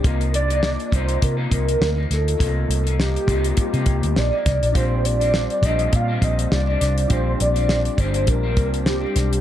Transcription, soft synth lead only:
X:1
M:4/4
L:1/8
Q:"Swing 16ths" 1/4=102
K:Bb
V:1 name="Soft synth lead"
B d2 c B B2 A- | A2 G2 G2 d d | c d2 e f e d2 | c d2 c B2 G2 |]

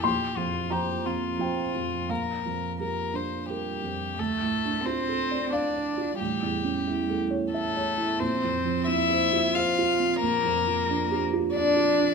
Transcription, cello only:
X:1
M:3/4
L:1/8
Q:1/4=90
K:Dm
V:1 name="Cello" clef=bass
F, F, F, F, F, F, | G, G, G, G, G,2 | A,2 C2 D2 | G,3 z A,2 |
C2 E2 F2 | B,3 z D2 |]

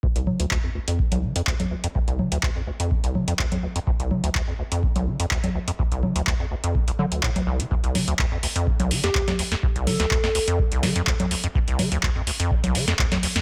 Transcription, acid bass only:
X:1
M:4/4
L:1/16
Q:1/4=125
K:Dm
V:1 name="Acid bass" clef=bass
D,, C,, D, D,, D,, F,, D,, F,, E,, C,, D, F,, D,, F,, D,, F,, | D,, C,, D, D,, D,, F,, D,, F,, E,, C,, D, F,, D,, F,, D,, F,, | D,, C,, D, D,, D,, F,, D,, F,, E,, C,, D, F,, D,, F,, D,, F,, | D,, C,, D, D,, D,, F,, D,, F,, E,, C,, D, D,, A,, D,, C,, D, |
D,, C,, D, D,, D,, F,, D,, F,, E,, C,, D, F,, D,, F,, D,, F,, | D,, C,, D, D,, D,, F,, D,, F,, E,, C,, D, F,, D,, F,, D,, F,, | D,, C,, D, D,, D,, F,, D,, F,, E,, C,, D, F,, D,, F,, D,, F,, |]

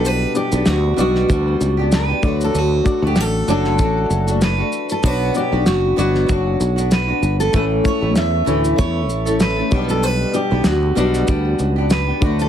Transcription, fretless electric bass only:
X:1
M:4/4
L:1/16
Q:"Swing 16ths" 1/4=96
K:Glyd
V:1 name="Fretless electric bass" clef=bass
B,,,2 z B,,, D,,2 B,,,2 D,,2 C,,4 D,,2 | D,,2 z D,, A,,,2 F,,,2 A,,,2 F,,,4 z2 | B,,,2 z B,,, F,,,2 G,,,2 F,,,2 B,,,4 G,,,2 | A,,,2 z A,,, E,,2 D,,2 E,,2 A,,,4 B,,,2- |
B,,,2 z B,,, D,,2 B,,,2 D,,2 C,,4 D,,2 |]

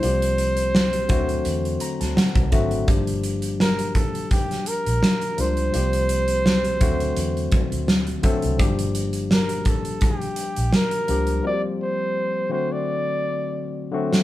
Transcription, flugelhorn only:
X:1
M:4/4
L:1/16
Q:"Swing 16ths" 1/4=84
K:Dm
V:1 name="Flugelhorn"
c12- c2 z2 | z4 B2 A2 G2 B4 c2- | c12- c2 z2 | z4 B2 A2 G4 B4 |
d2 c4 c d6- d z2 |]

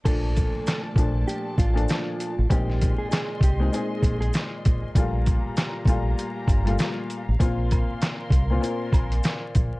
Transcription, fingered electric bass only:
X:1
M:4/4
L:1/16
Q:"Swing 16ths" 1/4=98
K:Bb
V:1 name="Fingered electric bass" clef=bass
B,,,3 z3 B,,,2 z2 A,,,2 z3 A,,, | B,,,3 z3 C,,2 z2 B,,,2 z2 B,,, z | B,,,3 z3 B,,,2 z2 G,,,2 z3 A,,, | B,,,3 z3 C,,2 z2 B,,,2 z2 B,,, z |]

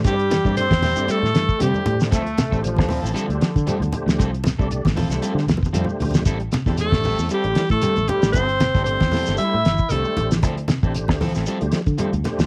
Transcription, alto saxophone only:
X:1
M:4/4
L:1/16
Q:"Swing 16ths" 1/4=116
K:Aphr
V:1 name="Alto saxophone"
G4 c4 A4 G3 z | z16 | z16 | z4 A4 G3 A3 G2 |
c4 c4 e4 A3 z | z16 |]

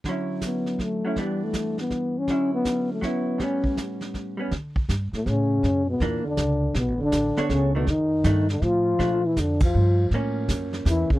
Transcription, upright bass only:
X:1
M:3/4
L:1/8
Q:"Swing" 1/4=161
K:Amix
V:1 name="Upright bass" clef=bass
z6 | z6 | z6 | z6 |
D,2 G,, z A,,2 | F,,2 E,,2 C,,2 | (3B,,, A,,, F,,, A,,, z C,,2 | =F,,2 G,,2 A,,2 |
_B,,2 =F,,2 G,,2 | A,,2 F,,2 E,, z |]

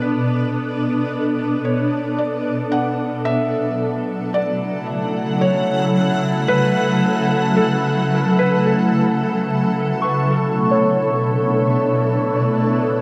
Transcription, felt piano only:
X:1
M:3/4
L:1/16
Q:1/4=55
K:Bdor
V:1 name="Felt piano"
B6 c2 d2 f2 | e4 d4 c4 | B4 A3 B A3 z | z12 |]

